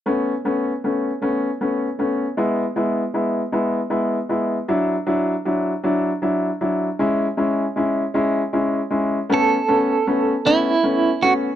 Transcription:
<<
  \new Staff \with { instrumentName = "Clean electric guitar" } { \time 6/8 \key a \major \tempo 4. = 52 r2. | r2. | r2. | r2. |
a'4. e'4 fis'8 | }
  \new Staff \with { instrumentName = "Upright piano" } { \time 6/8 \key a \major <a b cis'>8 <a b cis'>8 <a b cis'>8 <a b cis'>8 <a b cis'>8 <a b cis'>8 | <gis b e'>8 <gis b e'>8 <gis b e'>8 <gis b e'>8 <gis b e'>8 <gis b e'>8 | <fis d' e'>8 <fis d' e'>8 <fis d' e'>8 <fis d' e'>8 <fis d' e'>8 <fis d' e'>8 | <gis cis' e'>8 <gis cis' e'>8 <gis cis' e'>8 <gis cis' e'>8 <gis cis' e'>8 <gis cis' e'>8 |
<a b cis'>8 <a b cis'>8 <a b cis'>8 <a b cis'>8 <a b cis'>8 <a b cis'>8 | }
>>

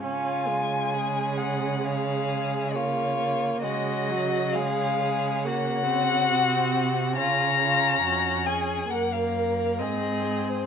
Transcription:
<<
  \new Staff \with { instrumentName = "Violin" } { \time 4/4 \key des \major \tempo 4 = 67 aes''4. ges''8 f''4 des''4 | ees''4 f''4 ges''2 | bes''4. aes''8 ges''16 f''8. ees''8. c''16 | }
  \new Staff \with { instrumentName = "Violin" } { \time 4/4 \key des \major f'4 aes'4 aes'4 f'4 | ges'4 aes'8 aes'8 ges'2 | f'8 f'8 ges'8 aes'8 bes'4 aes'4 | }
  \new Staff \with { instrumentName = "Viola" } { \time 4/4 \key des \major des'8 aes2~ aes8 bes8 bes8 | aes8 ges8 aes4 bes8 c'4. | des'2 bes4 c'4 | }
  \new Staff \with { instrumentName = "Cello" } { \clef bass \time 4/4 \key des \major des1 | des2. c4 | des4 f,4 ges,4 aes,4 | }
>>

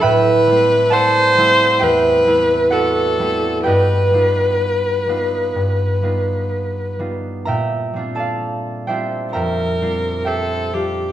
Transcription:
<<
  \new Staff \with { instrumentName = "Viola" } { \time 4/4 \key g \major \tempo 4 = 64 b'4 c''4 b'4 a'4 | b'2.~ b'8 r8 | r2 bes'4 a'8 g'8 | }
  \new Staff \with { instrumentName = "Harp" } { \time 4/4 \key g \major << { <a' b' c'' e'' g'' a'' b''>4 <a' d'' fis'' a''>4 <g' c'' e'' g''>4 <fis' b' d'' fis''>4 | <g' b' dis'' g''>1 | <bes' e'' g'' bes''>8. <a' d'' f'' a''>8. <g' c'' e'' g''>8 <bes' e'' g'' bes''>4 <g' c'' e'' g''>4 | } \\ { <a, a e'>8 <g a c' e'>4 <g a c' e'>8 e,8 <g a c' e'>4 <g a c' e'>8 | g,8 <g b dis' f'>4 <g b dis' f'>8 g,8 <g b dis' f'>4 <g b dis' f'>8 | bes,8 <g c' d' f'>4 <g c' d' f'>8 f,8 <g c' d' f'>4 <g c' d' f'>8 | } >> }
>>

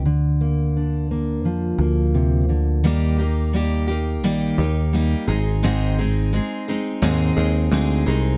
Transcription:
<<
  \new Staff \with { instrumentName = "Steel-string acoustic guitar" } { \time 4/4 \key aes \lydian \tempo 4 = 86 r1 | <ees g bes ees' g'>8 <bes ees' g'>8 <g bes ees' g'>8 <bes ees' g'>8 <ees g bes ees' g'>8 <bes ees' g'>8 <g bes ees' g'>8 <aes c' ees' aes'>8 | <aes, ees aes c' ees' aes'>8 <aes c' ees' aes'>8 <aes c' ees' aes'>8 <aes c' ees' aes'>8 <aes, ees aes c' ees' aes'>8 <aes c' ees' aes'>8 <aes c' ees' aes'>8 <aes c' ees' aes'>8 | }
  \new Staff \with { instrumentName = "Steel-string acoustic guitar" } { \clef bass \time 4/4 \key aes \lydian << { r8 bes8 d'8 bes4 bes4. | r1 | r1 | } \\ { d2 f4 c8 d8 | r1 | r1 | } >> }
  \new Staff \with { instrumentName = "Picked electric bass" } { \clef bass \time 4/4 \key aes \lydian d,2 f,8 d,4. | ees,2 bes,,8 ees,4 aes,,8~ | aes,,4. r8 ees,8 ees,8 d,8 c,8 | }
>>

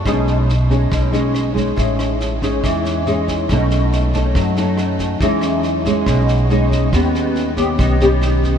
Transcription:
<<
  \new Staff \with { instrumentName = "Nylon-string guitar" } { \time 4/4 \key b \mixolydian \tempo 4 = 140 << { <gis cis' dis'>4 r8 <gis cis' dis'>4 <gis cis' dis'>4 <gis cis' dis'>8~ | <gis cis' dis'>4. <gis cis' dis'>4. <gis cis' dis'>4 | <a cis' dis'>4. <a cis' dis'>4 <a cis' dis'>4. | <gis cis' dis'>4. <gis cis' dis'>4. <gis cis' dis'>4 |
<b cis' g'>4. <b cis' g'>4 <b cis' g'>4. | } \\ { b,2 b,2 | a,2 e2 | b,2 fis2 | e2 b,2 |
dis2 dis2 | } >> }
  \new Staff \with { instrumentName = "Upright bass" } { \clef bass \time 4/4 \key b \mixolydian b,,2 b,,2 | a,,2 e,2 | b,,2 fis,2 | e,2 b,,2 |
dis,2 b,,2 | }
  \new DrumStaff \with { instrumentName = "Drums" } \drummode { \time 4/4 <bd ss sn>8 sn8 sn8 <bd sn>8 <bd ss sn>8 sn8 <ss sn>8 <bd sn>8 | <bd sn>8 <ss sn>8 sn8 <bd sn>8 <bd ss sn>8 sn8 sn8 <bd sn>8 | <bd ss sn>8 sn8 sn8 <bd sn>8 <bd ss sn>8 sn8 <ss sn>8 <bd sn>8 | <bd sn>8 <ss sn>8 sn8 <bd sn>8 <bd ss sn>8 sn8 sn8 <bd sn>8 |
<bd ss sn>8 sn8 sn8 <bd sn>8 <bd ss sn>8 sn8 <ss sn>8 <bd sn>8 | }
>>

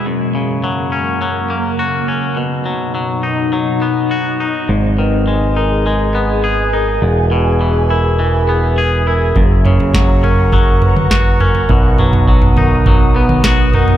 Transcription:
<<
  \new Staff \with { instrumentName = "Vibraphone" } { \time 4/4 \key gis \minor \tempo 4 = 103 r1 | r1 | r8 b'4 ais'4 b'4 ais'8~ | ais'8 b'4 ais'4 b'4 ais'8 |
r8 cis''4 ais'4 b'4 ais'8~ | ais'8 b'4 ais'4 b'4 ais'8 | }
  \new Staff \with { instrumentName = "Ambient pad" } { \time 4/4 \key gis \minor << { <fis, ais>1 | <b, dis'>1 | <gis' gis''>1~ | <gis' gis''>1 |
<ais'' cis'''>1 | <b dis'''>1 | } \\ { cis1 | fis1 | dis''1 | e''1 |
fis''1~ | fis''1 | } >> }
  \new Staff \with { instrumentName = "Clean electric guitar" } { \clef bass \time 4/4 \key gis \minor fis,8 cis8 fis8 cis'8 fis8 ais8 fis'8 cis'8 | b,8 fis8 fis8 dis'8 fis8 b8 fis'8 dis'8 | gis,8 dis8 gis8 dis'8 gis8 b8 gis'8 dis'8 | e,8 b,8 e8 e'8 e8 b8 gis'8 e'8 |
fis,8 cis8 fis8 cis'8 fis4 fis'8 cis'8 | b,8 fis8 fis8 dis'8 fis8 b8 fis'8 dis'8 | }
  \new Staff \with { instrumentName = "Picked electric bass" } { \clef bass \time 4/4 \key gis \minor r1 | r1 | gis,,1 | e,,1 |
fis,,1 | b,,1 | }
  \new DrumStaff \with { instrumentName = "Drums" } \drummode { \time 4/4 r4 r4 r4 r4 | r4 r4 r4 r4 | r4 r4 r4 r4 | r4 r4 r4 r4 |
<bd tomfh>8 tomfh16 tomfh16 <bd sn>8 tomfh8 <bd tomfh>8 tomfh16 toml16 <bd sn>8 tomfh16 tomfh16 | <bd tomfh>8 tomfh16 tomfh16 bd16 tomfh16 <tomfh toml>8 <bd tomfh>8. toml16 <bd sn>8 tomfh16 tomfh16 | }
>>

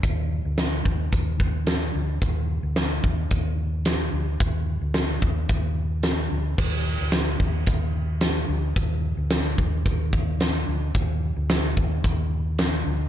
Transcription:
<<
  \new Staff \with { instrumentName = "Fingered electric bass" } { \clef bass \time 4/4 \key d \phrygian \tempo 4 = 110 ees,8. d,8. ees,8 ees,4. d,8 | ees,8. d,8. ees,8 ees,4. d,8 | ees,8. d,8. ees,8 ees,4. d,8 | ees,8. d,8. ees,8 ees,4. d,8 |
ees,8. d,8. ees,8 ees,4. d,8 | ees,8. d,8. ees,8 ees,4. d,8 | }
  \new DrumStaff \with { instrumentName = "Drums" } \drummode { \time 4/4 <hh bd>4 <hh sn>8 bd8 <hh bd>8 bd8 <hh sn>4 | <hh bd>4 <hh sn>8 bd8 <hh bd>4 <hh sn>4 | <hh bd>4 <hh sn>8 bd8 <hh bd>4 <hh sn>4 | <cymc bd>4 <hh sn>8 bd8 <hh bd>4 <hh sn>4 |
<hh bd>4 <hh sn>8 bd8 <hh bd>8 bd8 <hh sn>4 | <hh bd>4 <hh sn>8 bd8 <hh bd>4 <hh sn>4 | }
>>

